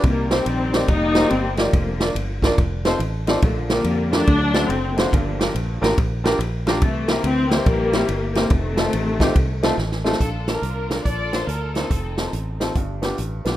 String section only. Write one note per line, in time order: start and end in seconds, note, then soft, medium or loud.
0.04 0.29 D#3 medium
0.04 0.30 G3 medium
0.04 0.30 A#3 medium
0.30 0.84 D#3 medium
0.30 0.85 G3 medium
0.30 0.89 C4 loud
0.89 1.70 G3 medium
0.89 1.56 A#3 medium
0.89 1.31 D#4 loud
1.30 1.58 C4 loud
1.57 2.39 D3 medium
1.57 2.39 F3 medium
1.57 2.15 A#3 medium
3.43 3.69 D3 medium
3.43 4.24 F3 medium
3.43 3.56 A3 medium
3.70 4.24 D3 medium
3.70 4.24 G3 medium
3.70 4.10 A#3 medium
4.12 4.93 F#3 medium
4.12 4.93 A3 medium
4.12 4.70 D4 loud
4.69 4.97 C4 loud
4.96 5.78 D3 medium
4.96 5.78 F3 medium
4.96 5.54 A#3 medium
6.81 7.52 E3 medium
6.81 7.07 A3 loud
7.08 7.24 A#3 loud
7.23 7.52 C4 loud
7.51 8.33 E3 medium
7.51 8.33 G3 medium
7.51 8.31 A#3 loud
8.32 8.48 A#3 loud
8.47 9.74 C3 medium
8.47 9.73 D#3 medium
8.47 9.76 A3 loud
10.20 10.47 D4 medium
10.20 10.47 F4 medium
10.20 10.46 A4 medium
10.48 11.29 D4 medium
10.48 11.04 F4 medium
10.48 11.06 A#4 medium
11.05 11.87 F4 medium
11.05 11.76 A4 medium
11.05 11.33 D5 medium
11.34 11.49 C5 medium
11.48 11.75 A#4 medium
11.76 12.57 C4 medium
11.76 12.58 D#4 medium
11.76 12.34 A4 medium